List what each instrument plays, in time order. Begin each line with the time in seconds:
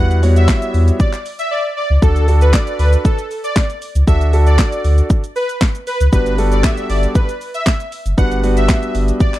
Already playing: sub bass E2, grand piano G3 B3 E4 F#4 B4
0.11 closed hi-hat, shaker
0.23 grand piano G3 B3 E4 F#4 C#5, open hi-hat, shaker
0.36 supersaw synth E5, closed hi-hat, shaker
0.48 kick, snare, clap, shaker
0.62 closed hi-hat, shaker
0.74 sub bass E2, open hi-hat, shaker
0.88 closed hi-hat, shaker
1.00 supersaw synth D5, kick, shaker
1.13 clap, closed hi-hat, shaker
1.26 open hi-hat, shaker
1.39 supersaw synth E5, closed hi-hat, shaker
1.51 supersaw synth D5
1.77 supersaw synth D5
1.90 sub bass C#2
2.02 sub bass D2, grand piano D4 F#4 A4, supersaw synth A4, kick, shaker
2.16 closed hi-hat, shaker
2.28 grand piano D4 F#4 A4, open hi-hat, shaker
2.41 supersaw synth B4, closed hi-hat, shaker
2.53 supersaw synth D5, kick, snare, clap, shaker
2.67 closed hi-hat, shaker
2.79 sub bass D2, supersaw synth B4, open hi-hat, shaker
2.93 closed hi-hat, shaker
3.05 supersaw synth A4, kick, shaker
3.19 closed hi-hat, shaker
3.31 open hi-hat, shaker
3.44 supersaw synth D5, closed hi-hat, shaker
3.56 kick, snare, clap, shaker
3.70 closed hi-hat, shaker
3.82 open hi-hat, shaker
3.95 sub bass C#2, closed hi-hat, shaker
4.07 sub bass D2, grand piano D4 F#4 A4, supersaw synth E5, kick, shaker
4.21 closed hi-hat, shaker
4.33 grand piano D4 F#4 A4, open hi-hat, shaker
4.47 supersaw synth D5, closed hi-hat, shaker
4.58 kick, snare, clap, shaker
4.72 closed hi-hat, shaker
4.84 sub bass D2, open hi-hat, shaker
4.98 closed hi-hat, shaker
5.10 kick, shaker
5.24 closed hi-hat, shaker
5.36 supersaw synth B4, open hi-hat, shaker
5.49 closed hi-hat, shaker
5.61 kick, snare, clap, shaker
5.75 closed hi-hat, shaker
5.87 supersaw synth B4, open hi-hat, shaker
6.00 sub bass C#2, closed hi-hat, shaker
6.12 sub bass G1, grand piano G3 B3 D4 F#4 B4, supersaw synth B4, kick, shaker
6.26 closed hi-hat, shaker
6.38 grand piano G3 B3 D4 F#4 A4, open hi-hat, shaker
6.52 supersaw synth D5, closed hi-hat, shaker
6.63 supersaw synth E5, kick, snare, clap, shaker
6.77 closed hi-hat, shaker
6.90 sub bass G1, supersaw synth D5, open hi-hat, shaker
7.03 closed hi-hat, shaker
7.15 supersaw synth B4, kick, shaker
7.29 closed hi-hat, shaker
7.41 open hi-hat, shaker
7.54 supersaw synth E5, closed hi-hat, shaker
7.66 kick, snare, clap, shaker
7.80 closed hi-hat, shaker
7.92 open hi-hat, shaker
8.06 sub bass F#1, closed hi-hat, shaker
8.17 sub bass G1, grand piano G3 B3 D4 F#4 B4, supersaw synth F#5, kick, shaker
8.31 closed hi-hat, shaker
8.43 grand piano G3 B3 D4 F#4 B4, open hi-hat, shaker
8.57 supersaw synth E5, closed hi-hat, shaker
8.69 kick, snare, clap, shaker
8.83 closed hi-hat, shaker
8.95 sub bass G1, open hi-hat, shaker
9.08 closed hi-hat, shaker
9.20 supersaw synth D5, kick, shaker
9.34 clap, closed hi-hat, shaker